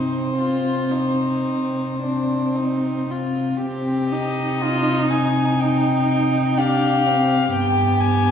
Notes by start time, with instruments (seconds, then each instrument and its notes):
Already playing: cello C3, viola C4, violin D#4 C5
0.37 cello C3, violin F4
0.91 viola C4, violin D#4
1.48 cello C3
2.01 viola C4, violin D4
2.55 cello C3, violin D#4
3.10 viola C4, violin F4
3.61 cello C3, viola C4, violin G4
4.12 viola D#4, violin D#5
4.62 violin F4
5.10 violin D#4 G#5
5.59 viola D#4, violin G5
6.58 viola D4, violin G4 F5
7.07 viola C4
7.53 cello G2, viola B3, violin G4 G5
8.00 violin G#5